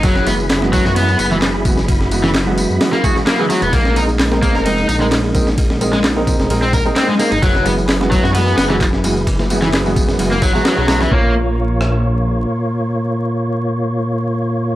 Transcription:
0.03 F#1 F#3 E4 G#4 B5, kick, ride, tambourine
0.16 snare
0.27 E3 G#3 B3 F#4, ride, tambourine
0.40 tambourine
0.50 snare, clap, open hi-hat, tambourine
0.62 E3 G#3 B3 F#4, snare
0.73 F#3, kick, ride, tambourine
0.85 F#2 F#4, snare, tambourine
0.96 E3 G#3 B3 F#4, ride, tambourine
1.08 tambourine
1.19 F#1 B3, ride, tambourine
1.31 E3 G#3 B3 F#4, tambourine
1.42 snare, clap, ride, tambourine
1.65 E3 G#3 B3 F#4, kick, ride, tambourine
1.78 snare, tambourine
1.88 F#4, kick, ride, tambourine
2.01 snare
2.11 E3 G#3 B3 F#4, ride, tambourine
2.24 E3, snare, tambourine
2.34 snare, clap, ride, tambourine
2.47 E3 G#3 B3 F#4
2.58 ride, tambourine
2.70 F#2, tambourine
2.81 E3 G#3 B3 F#4, snare, open hi-hat, tambourine
2.93 A#3, snare, tambourine
3.04 E3 G#3 B3 F#4 G#4, kick, ride, tambourine
3.16 snare, tambourine
3.27 A#3, snare, clap, ride, tambourine
3.39 E3 G#3 B3 G#4
3.50 E3 F#3 G#3 B3 F#4, ride, tambourine
3.62 E1 B3, ride, tambourine
3.73 A#1 G#3 A#3 D#4, kick, ride, tambourine
3.85 snare
3.96 G#3 C4 D#4 A#4, ride, tambourine
4.09 tambourine
4.19 snare, clap, open hi-hat, tambourine
4.32 G#3 C4 D#4 A#4, snare
4.42 A#3, kick, ride, tambourine
4.55 F1 A#4, snare, tambourine
4.65 G#3 C4 D#4 A#4, ride, tambourine
4.78 tambourine
4.88 A#1 D#4, ride, tambourine
5.00 G#3 C4 D#4 A#4, tambourine
5.12 snare, clap, ride, tambourine
5.35 G#3 C4 D#4 A#4, kick, ride, tambourine
5.47 snare, tambourine
5.58 kick, ride, tambourine
5.70 snare
5.81 G#3 C4 D#4 A#4, ride, tambourine
5.93 G#3, snare, tambourine
6.04 snare, clap, ride, tambourine
6.16 G#3 C4 D#4 A#4
6.27 kick, ride, tambourine
6.39 F1, snare, tambourine
6.50 A#1 G#3 C4 D#4 A#4, ride, tambourine
6.62 C4, tambourine
6.73 A#4, kick, ride, tambourine
6.86 G#3 C4 D#4 A#4, tambourine
6.96 C4, snare, clap, ride, tambourine
7.08 G#3
7.19 G#3 A#3 C4 D#4 A#4, ride, tambourine
7.31 G#1 D#4, ride, tambourine
7.42 F#1 F#3 E4 G#4 B4, kick, ride, tambourine
7.55 snare
7.65 E3 G#3 B3 F#4, ride, tambourine
7.78 tambourine
7.89 snare, clap, open hi-hat, tambourine
8.01 E3 G#3 B3 F#4, snare
8.11 F#3, kick, ride, tambourine
8.23 F#2 F#4, snare, tambourine
8.34 E3 G#3 B3 F#4, ride, tambourine
8.48 tambourine
8.57 F#1 B3, snare, open hi-hat, tambourine
8.70 E3 G#3 B3 F#4, snare
8.81 kick, clap, ride, tambourine
8.93 snare
9.04 E3 G#3 B3 F#4, ride, tambourine
9.17 tambourine
9.27 kick, ride, tambourine
9.39 snare, tambourine
9.50 E3 G#3 B3 F#4, ride, tambourine
9.62 E3, snare, tambourine
9.73 snare, clap, ride, tambourine
9.86 E3 G#3 B3 F#4, tambourine
9.96 kick, ride, tambourine
10.09 F#2, snare, tambourine
10.19 F#1 E3 G#3 B3 F#4, ride, tambourine
10.31 A#3, tambourine
10.42 F#3, kick, ride, tambourine
10.55 E3 F#3 G#3 B3 F#4, tambourine
10.65 F#3, snare, clap, ride, tambourine
10.78 B1 F#3
10.88 B1 E3 F#3 G#3 B3 F#4, snare, open hi-hat, tambourine
11.01 E3, snare, tambourine
11.11 A#1 A#2 A#3 F4 C#5, kick
11.81 cross-stick

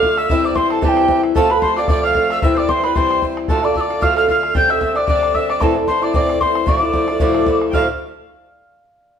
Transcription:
Already playing: A4 C5 D5 F5 F6
0.01 D3 A3 D4 F4, bodhran
0.17 E5 E6, bodhran
0.29 C3 E3 G3 C4 E4 E5, bodhran
0.44 D5 D6, bodhran
0.54 E3 G3 C4 E4 C5 C6, bodhran
0.70 A4 A5, bodhran
0.81 C3 E3 G3 C4 E4 G4 A5, bodhran
0.88 G5
0.97 bodhran
1.08 E3 G3 C4 E4, bodhran
1.24 bodhran
1.35 F3 A3 C4 F4 A4 A5, bodhran
1.50 A3 C4 F4 B4 B5, bodhran
1.61 F3 A3 C4 F4 C5 C6, bodhran
1.77 A3 C4 F4 D5 D6, bodhran
1.86 F3 A3 C4 D5 E5, bodhran
1.90 F4 D6
2.03 F5 F6
2.14 F3 A3 C4 F4 F5, bodhran
2.30 E5 E6, bodhran
2.42 C3 E3 G3 C4 E4 E5 E6, bodhran
2.54 E4 C5 D5 D6, bodhran
2.58 G3 C4
2.68 E3 G3 C4 E4 C5 C6, bodhran
2.83 G3 C4 E4 B4 B5, bodhran
2.95 C3 E3 G3 C4 E4 C5 C6, bodhran
3.11 bodhran
3.21 E3 G3 C4 E4, bodhran
3.37 bodhran
3.48 D2 A2 D3 A3 D4 F4 A4 A5, bodhran
3.59 E5
3.63 D3 A3 D4 F4 D5 D6, bodhran
3.74 D3 A3 D4 F4 D5 E6, bodhran
3.81 D6
3.89 D3 A3 D4 F4, bodhran
4.01 D2 A2 D3 A3 D4 F4 F5 F6, bodhran
4.16 F5 F6, bodhran
4.27 D3 A3 D4 F4 F5 F6, bodhran
4.43 bodhran
4.54 D3 G3 C4 D4 G5 G6, bodhran
4.68 G3 C4 D4 E5 E6, bodhran
4.80 D3 G3 C4 D4 E5, bodhran
4.95 G3 C4 D4 D5 D6, bodhran
5.07 D3 G3 C4 D4 D5 D6, bodhran
5.23 bodhran
5.34 D3 G3 C4 D4 E5 E6, bodhran
5.49 D5 D6, bodhran
5.60 A2 E3 A3 C4 E4 A4 A5, bodhran
5.75 A3 C4 E4, bodhran
5.87 E3 A3 C4 E4 C5 C6, bodhran
6.01 A3 C4 E4 D5 D6, bodhran
6.13 A2 E3 A3 C4 E4 D5 D6, bodhran
6.29 bodhran
6.39 E3 A3 C4 E4 C5 C6, bodhran
6.55 bodhran
6.66 D2 A2 F3 A3 D4 E4 D5 C#6, bodhran
6.80 A3 D4 E4 D6
6.84 F3
6.93 F3 A3 D4 E4, bodhran
7.08 F3 A3 D4 E4, bodhran
7.20 D2 A2 F3 A3 D4 E4, bodhran
7.34 bodhran
7.46 F3 A3 D4 E4, bodhran
7.62 bodhran
7.71 D2 A2 F3 F5 G5 F6, bodhran
7.75 A3 D4 E4

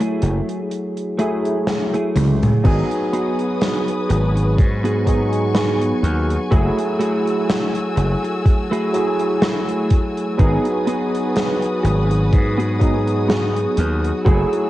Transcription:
Already playing: F#3 A3 E4 G#4
0.00 A3 E4 G#4, closed hi-hat
0.22 F#1, closed hi-hat
0.49 closed hi-hat
0.71 closed hi-hat
0.97 closed hi-hat
1.18 F#3 A3 E4 G#4, closed hi-hat
1.45 closed hi-hat
1.67 snare, closed hi-hat
1.94 A3 E4 G#4, closed hi-hat
2.16 C#2, closed hi-hat, high tom
2.43 closed hi-hat, mid tom
2.63 G#1 F#3 B3 D#4 F#4 G#4 B4 G#5 D#6, kick, closed hi-hat, crash
2.91 closed hi-hat
3.13 B3 D#4 F#4 G#4, closed hi-hat
3.39 closed hi-hat
3.61 snare, closed hi-hat
3.88 closed hi-hat
4.09 G#1, muted clean electric guitar stroke, closed hi-hat
4.36 muted clean electric guitar stroke, closed hi-hat
4.58 G#2 C#6, kick, closed hi-hat
4.84 B3 D#4 F#4 G#4, closed hi-hat
5.05 F#3 B3 D#4 G#4, kick, closed hi-hat
5.33 closed hi-hat
5.55 B3 D#4 F#4 G#4, snare, closed hi-hat
5.82 closed hi-hat
6.03 D#2, closed hi-hat
6.30 closed hi-hat
6.51 F#1 F#3 A3 E4 F#4 G#4 E6, kick, closed hi-hat
6.79 closed hi-hat
6.99 A3 E4 F#4 G#4, closed hi-hat
7.27 closed hi-hat
7.50 snare, closed hi-hat
7.75 closed hi-hat
7.96 F#1, muted clean electric guitar stroke, closed hi-hat
8.23 muted clean electric guitar stroke, closed hi-hat
8.46 kick, closed hi-hat
8.71 A3 E4 F#4 G#4, closed hi-hat
8.93 F#3 A3 E4 G#4, closed hi-hat
9.19 closed hi-hat
9.42 A3 E4 F#4 G#4, snare, closed hi-hat
9.69 closed hi-hat
9.90 kick, closed hi-hat
10.17 closed hi-hat
10.38 G#1 F#3 B3 D#4 F#4 G#4 B4 D#6, kick, closed hi-hat
10.65 closed hi-hat
10.87 B3 D#4 F#4 G#4, closed hi-hat
11.15 closed hi-hat
11.36 snare, closed hi-hat
11.62 closed hi-hat
11.83 G#1, muted clean electric guitar stroke, closed hi-hat
12.10 muted clean electric guitar stroke, closed hi-hat
12.33 G#2, kick, closed hi-hat
12.58 B3 D#4 F#4 G#4, closed hi-hat
12.80 F#3 B3 D#4 G#4, kick, closed hi-hat
13.07 closed hi-hat
13.28 B3 D#4 F#4 G#4, snare, closed hi-hat
13.56 closed hi-hat
13.77 D#2, closed hi-hat
14.04 closed hi-hat
14.25 F#1 F#3 A3 E4 F#4 G#4 E6, kick, closed hi-hat
14.53 closed hi-hat

